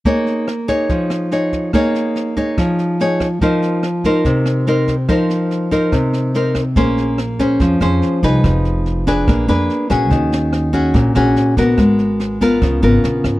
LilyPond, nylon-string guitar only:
\new Staff \with { instrumentName = "Nylon-string guitar" } { \time 4/4 \key bes \minor \tempo 4 = 143 << { <ees' aes' des''>4 r8 <ees' aes' des''>4. <ees' aes' des''>4 | <ees' aes' des''>4. <ees' aes' des''>4. <ees' aes' des''>8 r8 | <ees' bes' c''>4 r8 <ees' bes' c''>4. <ees' bes' c''>8 r8 | <ees' bes' c''>4. <ees' bes' c''>4. <ees' bes' c''>8 r8 |
<des' aes' c''>4 r8 <des' aes' c''>4 <des' aes' c''>4 <ees' aes' ces''>8~ | <ees' aes' ces''>4. <d' aes' ces''>4 <d' aes' ces''>4 <des' ges' aes'>8~ | <des' ges' aes'>4. <des' ges' aes'>4 <des' ges' aes'>4 <ces' ges' bes'>8~ | <ces' ges' bes'>4. <ces' f' bes'>4 <ces' f' bes'>4. | } \\ { bes2 f2 | bes2 f2 | f2 c2 | f2 c2 |
bes2 f2 | f2 bes2 | ees2 bes,2 | aes2 des2 | } >> }